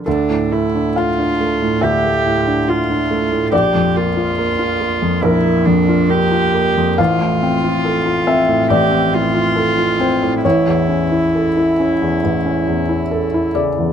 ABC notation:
X:1
M:4/4
L:1/16
Q:1/4=69
K:Dm
V:1 name="Cello"
D2 E2 F4 G4 F4 | G2 F6 E2 D2 G4 | F8 G2 F6 | E12- E2 z2 |]
V:2 name="Felt piano"
A4 f4 e8 | d8 B8 | f6 e2 d6 c2 | ^c12- c2 d2 |]
V:3 name="Felt piano"
D,, A,, A, D F D A, A,, D,, A, A,, D F D A, A,, | B,,, F,, B, F B, F B, F,, B,,, B, F,, F B, F B, F,, | A,,, A,, C F A F C A,, A,,, C A,, F A F C A,, | A,,, E,, ^C E A E C E,, A,,, C E,, E A E ^C, E,, |]